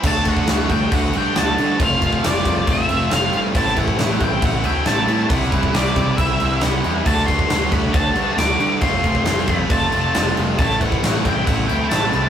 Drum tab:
CC |x-x-x-x-x-x-x-x-|x-x-x-x-x-x-x-x-|x-x-x-x-x-x-x-x-|x-x-x-x-x-x-x-x-|
SD |----o-------o---|----o-------o---|-o--oo------o---|-o--oo------o---|
BD |o-oo--o-o-------|o-oo--o-o-------|o-oo--o-o-------|o-oo--o-o-------|

CC |x-x-x-x-x-x-x-x-|x-x-x-x-x-x-x-x-|x-x-x-x-x-x-x-x-|
SD |-o--o-------o---|----oo------o---|-o--o-------o---|
BD |o-oo--o-o-------|o-oo--o-o-------|o-oo--o-o-------|